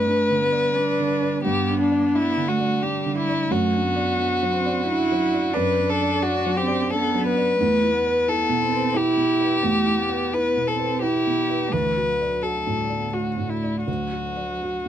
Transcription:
0.00 1.39 G2 medium
0.00 0.41 A3 medium
0.00 0.07 D4 soft
0.00 1.40 B4 medium
0.00 0.20 D5 soft
0.07 0.43 D4 medium
0.30 0.66 D3 medium
0.39 0.77 B3 medium
0.52 0.89 D5 medium
0.75 1.43 D4 loud
0.75 1.12 D4 medium
1.00 1.35 D3 medium
1.22 1.58 D5 medium
1.43 3.47 G2 medium
1.43 2.50 B3 loud
1.43 1.78 G4 medium
1.70 2.05 D4 soft
1.81 2.17 D4 medium
1.92 2.27 D5 medium
2.14 2.50 D4 medium
2.14 2.50 E4 medium
2.37 2.73 D3 medium
2.48 2.81 A3 medium
2.48 2.84 F#4 medium
2.60 2.96 D5 medium
2.80 3.48 G3 loud
2.80 3.19 D4 medium
2.80 3.16 G4 medium
3.06 3.42 D3 medium
3.18 3.53 E4 medium
3.29 3.51 D5 soft
3.48 5.51 F#2 medium
3.48 3.85 A3 medium
3.48 5.56 F#4 medium
3.74 4.10 D4 soft
3.83 4.52 B3 medium
3.96 4.32 D5 medium
4.18 4.54 D4 medium
4.43 4.78 F#3 medium
4.51 4.86 C4 medium
4.66 5.01 D5 medium
4.87 5.24 D4 medium
4.87 5.54 E4 loud
5.12 5.47 F#3 medium
5.34 5.69 D5 medium
5.53 7.56 F#2 medium
5.53 6.57 D4 loud
5.53 5.91 B4 medium
5.80 6.14 D4 medium
5.90 6.24 A4 medium
6.01 6.36 D5 medium
6.23 6.59 D4 medium
6.23 6.58 F#4 medium
6.46 6.82 F#3 medium
6.56 6.92 C4 loud
6.56 6.92 G4 medium
6.68 7.04 D5 medium
6.90 7.58 B3 loud
6.90 7.27 D4 medium
6.90 7.25 A4 medium
7.15 7.51 F#3 medium
7.27 8.30 B4 medium
7.37 7.59 D5 medium
7.59 9.61 E2 medium
7.59 7.93 A3 loud
7.83 8.19 E4 medium
7.92 8.62 B3 medium
8.07 8.42 B4 medium
8.28 8.64 E4 medium
8.28 8.98 A4 medium
8.49 8.86 B2 medium
8.61 8.96 C4 loud
8.72 9.09 B4 medium
8.95 9.64 E4 loud
8.95 9.32 E4 medium
8.95 10.35 G4 medium
9.17 9.54 B2 medium
9.41 9.77 B4 medium
9.63 11.68 E2 medium
9.63 9.99 A3 loud
9.86 10.23 E4 soft
9.97 10.68 B3 medium
10.09 10.46 B4 medium
10.33 10.70 E4 medium
10.33 10.69 B4 medium
10.57 10.93 B2 medium
10.66 11.04 C4 medium
10.66 11.02 A4 medium
10.79 11.16 B4 medium
11.02 11.72 E4 loud
11.02 11.40 E4 soft
11.02 11.74 G4 medium
11.27 11.63 B2 soft
11.49 11.72 B4 medium
11.71 13.84 D2 medium
11.71 12.08 E3 medium
11.71 12.44 B4 medium
11.97 12.33 F#4 soft
12.07 12.78 F#3 medium
12.21 12.57 D5 soft
12.43 12.80 F#4 soft
12.43 13.15 A4 medium
12.67 13.05 A2 soft
12.76 12.95 G3 medium
12.90 13.28 D5 soft
12.96 13.12 B3 medium
13.11 13.87 A3 medium
13.11 13.51 F#4 soft
13.11 13.53 F#4 soft
13.37 13.77 A2 soft
13.50 13.85 E4 soft
13.63 14.03 D5 soft
13.86 14.88 D2 soft
13.86 14.88 F#3 medium
13.86 14.88 F#4 soft
14.12 14.52 F#4 soft
14.37 14.76 D5 soft
14.62 14.88 F#4 soft

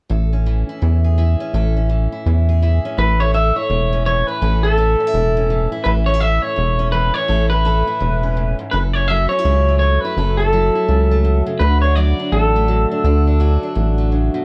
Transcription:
0.10 0.64 A1 medium
0.10 0.81 A2 medium
0.10 1.04 A4 medium
0.33 1.40 C#4 medium
0.46 1.17 E3 medium
0.69 1.18 E4 medium
0.82 1.36 E2 medium
0.82 1.54 A2 medium
1.04 1.53 G#4 medium
1.18 1.88 E3 medium
1.18 2.12 E4 soft
1.40 1.76 C#4 medium
1.54 2.08 A1 medium
1.54 2.25 A2 medium
1.54 2.48 A4 medium
1.77 2.84 C#4 medium
1.90 2.61 E3 medium
2.12 2.62 E4 medium
2.26 2.80 E2 medium
2.26 2.97 A2 medium
2.49 2.97 G#4 medium
2.62 3.33 E3 medium
2.62 2.97 E4 medium
2.85 2.97 C#4 medium
2.98 3.52 A1 medium
2.98 3.69 A2 medium
2.98 3.34 A4 medium
2.98 3.21 B4 medium
3.20 3.56 E4 medium
3.20 3.33 C#5 medium
3.34 4.06 E3 medium
3.34 4.42 A4 medium
3.34 3.56 E5 medium
3.56 4.28 E4 medium
3.56 4.05 C#5 medium
3.70 4.24 E1 medium
3.70 4.41 A2 medium
3.93 5.00 C#4 medium
4.06 4.77 E3 medium
4.06 4.27 C#5 medium
4.27 4.64 E4 medium
4.27 4.65 B4 medium
4.42 4.96 A1 medium
4.42 5.14 A2 medium
4.42 5.85 A4 medium
4.63 4.78 E4 medium
4.63 5.67 A4 medium
4.78 5.50 E3 medium
4.78 5.00 E4 medium
5.00 5.07 C#4 medium
5.07 5.71 E4 soft
5.14 5.68 E1 medium
5.14 5.84 A2 medium
5.37 6.07 C#4 medium
5.50 6.20 E3 medium
5.72 6.07 E4 medium
5.84 6.40 A1 medium
5.84 6.56 A2 medium
5.84 6.21 A4 medium
5.84 5.90 B4 medium
6.06 6.14 C#4 medium
6.06 6.20 C#5 medium
6.14 6.42 E4 soft
6.20 6.92 E3 medium
6.20 7.29 A4 medium
6.20 6.42 E5 medium
6.42 7.15 E4 medium
6.42 6.92 C#5 medium
6.56 7.11 E1 medium
6.56 7.27 A2 medium
6.79 8.23 C#4 medium
6.92 7.65 E3 medium
6.92 7.14 B4 medium
7.14 7.51 E4 medium
7.14 7.49 C#5 medium
7.28 7.83 A1 medium
7.28 7.99 A2 medium
7.28 7.66 A4 medium
7.50 7.87 E4 medium
7.50 8.54 B4 medium
7.65 9.09 E3 medium
7.65 8.73 A4 medium
7.87 8.76 E4 medium
8.00 8.55 E1 medium
8.00 8.36 A2 medium
8.23 9.31 C#4 medium
8.37 8.58 A2 medium
8.59 8.72 G#2 medium
8.71 9.27 F#1 medium
8.71 10.17 F#2 medium
8.71 9.09 A4 medium
8.71 8.78 B4 medium
8.93 9.31 E4 medium
8.93 9.08 C#5 medium
9.08 9.81 F#3 medium
9.08 10.18 A4 medium
9.08 9.29 E5 medium
9.29 9.39 C#4 medium
9.29 9.78 C#5 medium
9.39 10.03 E4 soft
9.45 9.99 C#2 medium
9.45 9.81 C#3 medium
9.68 11.11 A3 medium
9.79 10.43 F#3 medium
9.79 10.01 C#5 medium
10.01 10.39 B4 medium
10.05 10.16 E4 medium
10.17 10.71 F#1 medium
10.17 11.61 F#2 medium
10.17 11.61 A4 medium
10.37 10.52 E4 medium
10.37 11.42 A4 medium
10.53 11.96 F#3 medium
10.53 10.74 E4 medium
10.75 11.59 E4 medium
10.88 11.42 C#2 medium
10.88 11.24 C#3 medium
11.11 12.55 A3 medium
11.25 11.46 B2 medium
11.46 11.60 C#3 medium
11.59 12.14 D2 medium
11.59 13.03 D3 medium
11.59 11.97 F#4 medium
11.59 11.81 B4 medium
11.82 12.19 D4 medium
11.82 11.95 C#5 medium
11.95 12.67 F#3 medium
11.95 13.04 F#4 medium
11.95 12.32 D5 medium
12.19 12.90 D4 medium
12.32 12.86 A1 medium
12.32 13.02 A2 medium
12.32 14.08 A4 medium
12.56 13.98 A3 medium
12.68 13.02 F#3 medium
12.91 13.03 D4 medium
13.04 13.58 D2 medium
13.04 14.12 D3 medium
13.04 13.39 F#4 medium
13.27 13.62 D4 medium
13.40 14.45 F#3 medium
13.40 14.45 F#4 medium
13.63 14.45 D4 medium
13.75 14.30 A1 medium
13.75 14.45 A2 medium
13.98 14.45 A3 medium
14.12 14.34 C#3 medium
14.34 14.45 B2 medium

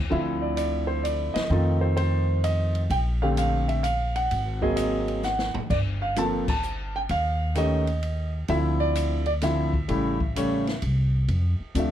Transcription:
0.10 1.32 D2 medium
0.10 1.41 D3 medium
0.10 1.41 F3 medium
0.10 1.41 C4 medium
0.10 1.42 E4 medium
0.10 0.19 E5 medium
0.42 0.55 D5 medium
0.56 0.89 D5 medium
0.56 hi-hat pedal medium
0.56 ride medium
0.87 1.04 C5 medium
1.03 1.33 D5 medium
1.03 hi-hat pedal medium
1.03 ride medium
1.34 1.83 D#5 medium
1.34 muted upright bass stroke soft
1.34 snare medium
1.34 ride medium
1.50 2.86 F2 medium
1.50 2.81 D#3 medium
1.50 2.81 A3 medium
1.50 2.82 C4 medium
1.50 2.82 F4 medium
1.81 1.95 C5 medium
1.97 2.40 C5 medium
1.97 ride medium
2.44 2.80 D#5 medium
2.44 hi-hat pedal medium
2.44 ride medium
2.75 ride medium
2.90 4.26 A#1 medium
2.90 2.98 G5 loud
2.90 ride medium
3.22 3.81 D3 medium
3.22 3.81 A3 medium
3.22 3.81 C4 medium
3.22 3.81 G4 medium
3.22 3.27 F5 medium
3.37 3.67 F5 loud
3.37 hi-hat pedal medium
3.37 ride medium
3.68 3.83 E5 medium
3.68 ride soft
3.83 4.16 F5 medium
3.83 hi-hat pedal medium
3.83 ride medium
4.16 4.59 F#5 loud
4.16 ride medium
4.31 5.51 G#1 medium
4.31 ride medium
4.62 5.21 F#3 medium
4.62 5.21 A#3 medium
4.62 5.21 C4 medium
4.62 5.21 G#4 medium
4.62 4.75 D#5 medium
4.62 kick medium
4.76 5.25 D#5 medium
4.76 hi-hat pedal medium
4.76 ride medium
5.08 ride soft
5.23 5.60 F#5 medium
5.23 snare medium
5.23 hi-hat pedal medium
5.39 snare medium
5.54 muted upright bass stroke soft
5.54 floor tom medium
5.70 7.06 G1 medium
5.70 5.77 D5 medium
5.70 kick medium
5.70 crash medium
6.02 6.17 F5 medium
6.16 6.45 F3 medium
6.16 6.45 A#3 medium
6.16 6.45 C4 medium
6.16 6.45 A4 medium
6.16 6.25 A5 loud
6.16 hi-hat pedal medium
6.16 ride medium
6.48 6.92 A5 loud
6.48 kick medium
6.48 crash medium
6.63 hi-hat pedal medium
6.96 7.01 G5 loud
7.09 8.45 D#2 medium
7.09 7.54 F5 loud
7.09 ride medium
7.55 7.84 D#3 medium
7.55 7.84 A3 medium
7.55 7.84 C#4 medium
7.55 7.84 G4 medium
7.55 8.31 D#5 medium
7.55 hi-hat pedal medium
7.55 ride medium
7.87 ride soft
8.03 ride medium
8.48 9.85 D2 medium
8.48 9.20 D3 medium
8.48 9.20 F3 medium
8.48 9.21 C4 medium
8.48 9.21 E4 medium
8.48 8.57 E5 loud
8.48 ride medium
8.80 9.25 D5 loud
8.95 hi-hat pedal medium
8.95 ride medium
9.26 9.31 D5 loud
9.26 ride soft
9.41 9.70 D3 medium
9.41 9.70 F3 medium
9.41 9.71 C4 medium
9.41 9.71 E4 medium
9.41 10.79 E5 medium
9.41 snare soft
9.41 hi-hat pedal medium
9.41 ride medium
9.74 kick medium
9.88 10.78 A1 medium
9.88 10.16 C#3 medium
9.88 10.17 G3 medium
9.88 10.17 A3 medium
9.88 10.17 E4 medium
9.88 ride medium
10.20 kick medium
10.35 10.63 C#3 medium
10.35 10.64 G3 medium
10.35 10.64 A3 medium
10.35 10.64 C#4 medium
10.35 hi-hat pedal medium
10.35 ride medium
10.67 snare medium
10.67 ride soft
10.82 11.25 C2 medium
10.82 ride medium
11.28 11.57 F2 medium
11.28 ride medium
11.60 muted upright bass stroke soft
11.75 11.91 D2 medium
11.75 11.91 C3 medium
11.75 11.91 F3 medium
11.75 11.91 A3 medium
11.75 11.91 D4 medium
11.75 hi-hat pedal medium
11.75 ride medium
11.79 11.91 E5 medium

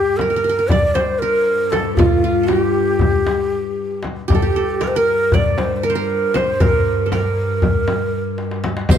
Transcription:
0.00 4.30 G2 medium
0.00 0.18 G4 medium
0.00 0.95 G4 medium
0.17 0.70 A#4 medium
0.17 darbuka tek medium
0.17 frame drum medium
0.21 0.30 A#4 medium
0.30 0.36 A#4 soft
0.36 0.44 A#4 medium
0.44 0.49 A#4 medium
0.44 darbuka ka soft
0.49 0.58 A#4 medium
0.59 1.22 A#4 medium
0.68 0.96 D5 loud
0.68 1.70 D5 medium
0.68 darbuka dum medium
0.68 frame drum medium
0.95 1.20 C5 medium
0.95 2.01 C5 medium
0.95 darbuka tek medium
0.95 frame drum medium
1.19 1.72 A#4 medium
1.19 1.79 A#4 medium
1.19 darbuka ka soft
1.71 1.96 A4 medium
1.71 2.43 A4 medium
1.71 darbuka tek medium
1.71 frame drum medium
1.85 darbuka ka soft
1.96 2.49 F4 medium
1.96 2.23 F4 medium
1.96 darbuka dum medium
1.96 frame drum loud
2.10 darbuka ka soft
2.24 3.59 F4 medium
2.43 3.60 A4 soft
2.48 2.62 F#4 medium
2.48 3.99 G4 medium
2.48 darbuka tek medium
2.48 frame drum medium
2.62 4.03 G4 medium
2.75 darbuka ka soft
2.99 darbuka dum medium
2.99 frame drum medium
3.26 darbuka tek medium
3.26 frame drum medium
3.52 darbuka ka soft
4.03 darbuka tek medium
4.03 frame drum medium
4.17 darbuka ka soft
4.28 8.90 G2 medium
4.28 4.42 G4 medium
4.28 darbuka dum medium
4.28 frame drum medium
4.32 4.85 G4 medium
4.32 4.56 A4 medium
4.42 5.68 G4 medium
4.42 darbuka ka soft
4.56 4.87 A4 medium
4.81 4.96 A#4 medium
4.81 4.89 A#4 medium
4.81 darbuka tek medium
4.81 frame drum medium
4.88 4.98 C5 medium
4.96 5.83 A#4 medium
4.96 5.36 A#4 loud
5.07 darbuka ka soft
5.32 6.32 D5 medium
5.32 5.60 D5 loud
5.32 darbuka dum medium
5.32 frame drum medium
5.58 5.76 C5 medium
5.58 darbuka tek medium
5.58 frame drum medium
5.76 5.86 C5 medium
5.83 5.95 A#4 medium
5.83 6.38 A#4 medium
5.83 darbuka ka soft
5.90 6.34 C5 medium
5.95 6.60 A#4 medium
6.34 7.40 C5 medium
6.34 6.63 C5 medium
6.34 darbuka tek medium
6.34 frame drum medium
6.47 darbuka ka soft
6.60 7.12 A#4 medium
6.60 darbuka dum medium
6.60 frame drum medium
6.74 darbuka ka soft
6.86 darbuka ka soft
7.06 7.18 A4 soft
7.12 8.61 A#4 medium
7.12 darbuka tek medium
7.12 frame drum medium
7.37 darbuka ka soft
7.62 darbuka dum medium
7.62 frame drum medium
7.88 darbuka tek medium
7.88 frame drum medium
8.13 darbuka ka soft
8.38 darbuka tek soft
8.51 darbuka ka medium
8.64 darbuka tek medium
8.64 frame drum medium
8.77 darbuka ka medium
8.89 8.98 G2 medium
8.89 8.98 C5 medium
8.89 riq medium
8.89 frame drum loud
8.89 darbuka dum medium

